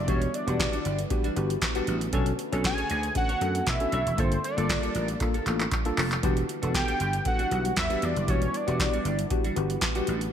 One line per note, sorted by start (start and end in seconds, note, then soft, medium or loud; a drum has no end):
0.00 10.30 D3 medium
0.00 2.09 E3 medium
0.00 2.09 G3 loud
0.00 4.14 B3 medium
0.00 2.09 E4 medium
0.08 0.26 E1 loud
0.08 0.23 G3 medium
0.08 0.27 B3 medium
0.08 0.27 D4 medium
0.08 0.22 D4 medium
0.08 0.27 F#4 medium
0.08 0.21 F#4 medium
0.08 0.27 G4 medium
0.08 0.36 C#5 medium
0.08 kick loud
0.08 closed hi-hat medium
0.22 muted clean electric guitar stroke soft
0.22 closed hi-hat medium
0.34 1.11 D5 medium
0.34 muted clean electric guitar stroke soft
0.34 closed hi-hat medium
0.47 0.65 E1 loud
0.47 0.58 G3 soft
0.47 0.77 B3 medium
0.47 0.77 D4 medium
0.47 0.58 D4 soft
0.47 0.58 F#4 medium
0.47 0.78 F#4 medium
0.47 0.78 G4 loud
0.47 closed hi-hat soft
0.59 muted clean electric guitar stroke soft
0.59 kick loud
0.59 snare loud
0.59 clap medium
0.59 closed hi-hat medium
0.73 0.83 G3 medium
0.73 0.84 D4 medium
0.73 0.86 F#4 medium
0.73 closed hi-hat medium
0.85 1.03 G1 medium
0.85 0.97 G3 medium
0.85 0.97 D4 medium
0.85 0.97 G4 medium
0.85 closed hi-hat medium
0.99 muted clean electric guitar stroke soft
0.99 closed hi-hat medium
1.10 1.23 B3 medium
1.10 1.24 D4 medium
1.10 1.24 F#4 medium
1.10 1.24 G4 medium
1.10 muted clean electric guitar stroke soft
1.10 kick loud
1.10 closed hi-hat medium
1.24 1.35 G3 medium
1.24 1.35 D4 medium
1.24 1.36 F#4 medium
1.24 closed hi-hat soft
1.36 1.55 G1 loud
1.36 1.55 B3 medium
1.36 1.55 D4 medium
1.36 1.55 F#4 medium
1.36 1.55 G4 loud
1.36 muted clean electric guitar stroke soft
1.36 closed hi-hat medium
1.50 muted clean electric guitar stroke soft
1.50 closed hi-hat medium
1.62 muted clean electric guitar stroke soft
1.62 kick medium
1.62 snare loud
1.62 clap medium
1.62 closed hi-hat medium
1.75 1.86 G3 medium
1.75 1.93 B3 loud
1.75 1.93 D4 medium
1.75 1.87 D4 medium
1.75 1.88 F#4 medium
1.75 1.94 F#4 medium
1.75 1.94 G4 medium
1.75 closed hi-hat medium
1.87 2.06 A1 medium
1.87 1.99 G3 medium
1.87 2.00 D4 medium
1.87 2.00 F#4 medium
1.87 closed hi-hat medium
2.01 muted clean electric guitar stroke soft
2.01 closed hi-hat medium
2.13 2.31 B1 loud
2.13 4.16 A3 medium
2.13 2.32 C#4 medium
2.13 2.28 D4 medium
2.13 2.32 D4 medium
2.13 2.32 F#4 medium
2.13 2.32 A4 loud
2.13 2.27 A4 medium
2.13 2.26 C#5 medium
2.13 kick loud
2.13 closed hi-hat loud
2.26 muted clean electric guitar stroke soft
2.26 closed hi-hat medium
2.39 muted clean electric guitar stroke soft
2.39 closed hi-hat medium
2.52 2.71 B1 medium
2.52 2.83 C#4 medium
2.52 2.83 D4 medium
2.52 2.64 D4 medium
2.52 2.83 F#4 medium
2.52 2.83 A4 medium
2.52 2.63 A4 medium
2.52 2.63 C#5 medium
2.52 closed hi-hat soft
2.64 3.13 G#5 loud
2.64 kick medium
2.64 snare loud
2.64 clap medium
2.64 closed hi-hat medium
2.78 2.89 D4 medium
2.78 2.90 A4 medium
2.78 2.91 C#5 medium
2.78 closed hi-hat soft
2.90 3.08 D2 medium
2.90 3.02 D4 medium
2.90 3.02 A4 medium
2.90 3.03 D5 medium
2.90 closed hi-hat medium
3.03 muted clean electric guitar stroke soft
3.03 closed hi-hat medium
3.15 3.28 C#4 medium
3.15 3.28 D4 medium
3.15 3.29 F#4 medium
3.15 3.29 A4 medium
3.15 3.61 F#5 loud
3.15 muted clean electric guitar stroke soft
3.15 kick loud
3.15 closed hi-hat medium
3.29 3.40 D4 medium
3.29 3.41 A4 medium
3.29 3.41 C#5 medium
3.29 closed hi-hat medium
3.41 3.59 F#2 medium
3.41 3.60 C#4 medium
3.41 3.60 D4 medium
3.41 3.60 F#4 medium
3.41 3.60 A4 medium
3.41 muted clean electric guitar stroke soft
3.41 closed hi-hat medium
3.55 muted clean electric guitar stroke soft
3.55 closed hi-hat medium
3.61 3.70 F#5 medium
3.67 3.76 B2 loud
3.67 4.21 E5 loud
3.67 muted clean electric guitar stroke medium
3.67 kick loud
3.67 snare loud
3.67 clap medium
3.67 closed hi-hat medium
3.80 3.98 C#4 medium
3.80 3.98 D4 medium
3.80 3.99 F#4 medium
3.80 3.99 A4 medium
3.80 muted clean electric guitar stroke soft
3.80 closed hi-hat medium
3.92 4.02 B1 medium
3.92 4.07 D4 medium
3.92 4.06 A4 medium
3.92 4.05 C#5 medium
3.92 closed hi-hat medium
4.06 4.15 E1 medium
4.06 muted clean electric guitar stroke soft
4.06 closed hi-hat medium
4.18 4.36 G1 loud
4.18 6.21 G3 medium
4.18 4.33 A#3 medium
4.18 4.37 A#3 medium
4.18 6.21 A#3 loud
4.18 4.37 D4 medium
4.18 6.21 F4 medium
4.18 4.37 F4 medium
4.18 4.31 F4 medium
4.18 6.21 A4 medium
4.18 4.37 A4 medium
4.18 4.30 A4 medium
4.18 4.44 C5 loud
4.18 kick loud
4.18 closed hi-hat medium
4.31 muted clean electric guitar stroke soft
4.31 closed hi-hat medium
4.44 5.17 D5 medium
4.44 muted clean electric guitar stroke soft
4.44 closed hi-hat medium
4.57 4.76 G1 loud
4.57 4.87 A#3 medium
4.57 4.68 A#3 medium
4.57 4.88 D4 medium
4.57 4.88 F4 medium
4.57 4.68 F4 medium
4.57 4.68 A4 medium
4.57 4.88 A4 medium
4.57 closed hi-hat medium
4.69 kick medium
4.69 snare medium
4.69 clap medium
4.69 closed hi-hat medium
4.83 4.93 A#3 medium
4.83 4.94 F4 medium
4.83 4.96 A4 medium
4.83 closed hi-hat soft
4.95 5.13 A1 medium
4.95 5.07 A#3 medium
4.95 5.07 F4 medium
4.95 5.07 A#4 medium
4.95 closed hi-hat medium
5.08 muted clean electric guitar stroke soft
5.08 closed hi-hat medium
5.20 5.34 A#3 medium
5.20 5.34 D4 medium
5.20 5.34 F4 medium
5.20 5.34 A4 medium
5.20 muted clean electric guitar stroke soft
5.20 kick loud
5.20 clap medium
5.20 closed hi-hat medium
5.34 5.45 A#3 medium
5.34 5.46 F4 medium
5.34 5.46 A4 medium
5.34 closed hi-hat soft
5.46 5.64 A1 loud
5.46 5.65 A#3 medium
5.46 5.65 D4 medium
5.46 5.65 F4 medium
5.46 5.66 A4 medium
5.46 muted clean electric guitar stroke soft
5.46 clap medium
5.46 closed hi-hat medium
5.60 muted clean electric guitar stroke soft
5.60 clap medium
5.60 closed hi-hat medium
5.71 kick loud
5.71 clap medium
5.71 closed hi-hat medium
5.85 6.03 A#3 medium
5.85 6.04 D4 medium
5.85 6.04 F4 medium
5.85 6.04 A4 loud
5.85 muted clean electric guitar stroke soft
5.85 closed hi-hat medium
5.97 6.16 F1 medium
5.97 6.12 A#3 medium
5.97 6.11 F4 medium
5.97 6.10 A4 medium
5.97 clap medium
5.97 open hi-hat medium
6.11 muted clean electric guitar stroke soft
6.11 clap medium
6.11 closed hi-hat medium
6.23 6.41 E1 loud
6.23 10.30 E3 medium
6.23 6.38 G3 medium
6.23 10.30 G3 loud
6.23 6.42 B3 medium
6.23 10.33 B3 medium
6.23 6.37 D4 medium
6.23 6.42 D4 medium
6.23 10.30 E4 medium
6.23 6.42 F#4 medium
6.23 6.36 F#4 medium
6.23 6.42 G4 loud
6.23 kick loud
6.23 closed hi-hat medium
6.37 muted clean electric guitar stroke soft
6.37 closed hi-hat medium
6.49 muted clean electric guitar stroke soft
6.49 closed hi-hat medium
6.62 6.81 E1 loud
6.62 6.73 G3 soft
6.62 6.93 B3 medium
6.62 6.93 D4 medium
6.62 6.73 D4 medium
6.62 6.73 F#4 medium
6.62 6.93 F#4 medium
6.62 6.93 A4 medium
6.62 closed hi-hat medium
6.74 7.23 G5 loud
6.74 muted clean electric guitar stroke soft
6.74 kick loud
6.74 snare loud
6.74 clap medium
6.74 closed hi-hat medium
6.87 6.98 G3 medium
6.87 6.99 D4 medium
6.87 7.01 F#4 medium
6.87 closed hi-hat medium
7.00 7.18 G1 medium
7.00 7.12 G3 medium
7.00 7.12 D4 medium
7.00 7.12 G4 medium
7.00 closed hi-hat medium
7.13 muted clean electric guitar stroke soft
7.13 closed hi-hat medium
7.25 7.39 B3 medium
7.25 7.39 D4 medium
7.25 7.39 F#4 medium
7.25 7.39 A4 medium
7.25 7.74 F#5 loud
7.25 muted clean electric guitar stroke soft
7.25 kick loud
7.25 closed hi-hat medium
7.39 7.49 G3 medium
7.39 7.50 D4 medium
7.39 7.50 F#4 medium
7.39 closed hi-hat soft
7.51 7.70 B1 medium
7.51 7.70 B3 medium
7.51 7.70 D4 medium
7.51 7.70 F#4 medium
7.51 7.70 G4 medium
7.51 muted clean electric guitar stroke soft
7.51 closed hi-hat medium
7.65 muted clean electric guitar stroke soft
7.65 closed hi-hat medium
7.76 7.87 E2 medium
7.76 8.06 E5 loud
7.76 muted clean electric guitar stroke soft
7.76 kick medium
7.76 snare loud
7.76 clap medium
7.76 closed hi-hat medium
7.90 8.01 G3 medium
7.90 8.08 B3 medium
7.90 8.08 D4 medium
7.90 8.01 D4 medium
7.90 8.02 F#4 medium
7.90 8.09 F#4 medium
7.90 8.09 G4 medium
7.90 closed hi-hat medium
8.02 8.12 E2 loud
8.02 8.14 G3 medium
8.02 8.14 D4 medium
8.02 8.15 F#4 medium
8.02 8.32 D5 medium
8.02 closed hi-hat medium
8.16 8.28 F#1 medium
8.16 muted clean electric guitar stroke soft
8.16 closed hi-hat soft
8.28 8.46 E1 loud
8.28 8.43 G3 medium
8.28 8.47 B3 medium
8.28 8.47 D4 medium
8.28 8.42 D4 medium
8.28 8.47 F#4 medium
8.28 8.41 F#4 medium
8.28 8.47 G4 medium
8.28 8.58 C#5 loud
8.28 kick loud
8.28 closed hi-hat medium
8.42 muted clean electric guitar stroke soft
8.42 closed hi-hat medium
8.54 9.32 D5 medium
8.54 muted clean electric guitar stroke soft
8.54 closed hi-hat medium
8.67 8.86 E1 medium
8.67 8.79 G3 soft
8.67 8.98 B3 medium
8.67 8.98 D4 medium
8.67 8.78 D4 medium
8.67 8.78 F#4 medium
8.67 8.98 F#4 medium
8.67 8.98 G4 medium
8.67 closed hi-hat soft
8.80 muted clean electric guitar stroke soft
8.80 kick loud
8.80 snare medium
8.80 clap medium
8.80 closed hi-hat medium
8.93 9.04 G3 medium
8.93 9.05 D4 medium
8.93 9.06 F#4 medium
8.93 closed hi-hat soft
9.05 9.23 G1 medium
9.05 9.17 G3 medium
9.05 9.17 D4 medium
9.05 9.18 G4 medium
9.05 closed hi-hat medium
9.19 muted clean electric guitar stroke soft
9.19 closed hi-hat medium
9.30 9.44 B3 medium
9.30 9.44 D4 medium
9.30 9.44 F#4 medium
9.30 9.44 G4 medium
9.30 muted clean electric guitar stroke soft
9.30 kick loud
9.30 closed hi-hat medium
9.44 9.55 G3 medium
9.44 9.56 D4 medium
9.44 9.56 F#4 medium
9.44 closed hi-hat medium
9.56 9.75 G1 medium
9.56 9.75 B3 medium
9.56 9.75 D4 medium
9.56 9.75 F#4 medium
9.56 9.76 G4 medium
9.56 muted clean electric guitar stroke soft
9.56 closed hi-hat medium
9.70 muted clean electric guitar stroke soft
9.70 closed hi-hat soft
9.81 muted clean electric guitar stroke soft
9.81 kick loud
9.81 snare loud
9.81 clap medium
9.81 closed hi-hat medium
9.95 10.07 G3 medium
9.95 10.13 B3 medium
9.95 10.14 D4 medium
9.95 10.07 D4 medium
9.95 10.08 F#4 medium
9.95 10.14 F#4 medium
9.95 10.14 G4 loud
9.95 closed hi-hat medium
10.07 10.26 A1 medium
10.07 10.20 G3 medium
10.07 10.20 D4 medium
10.07 10.20 F#4 medium
10.07 closed hi-hat medium
10.21 muted clean electric guitar stroke medium
10.21 closed hi-hat medium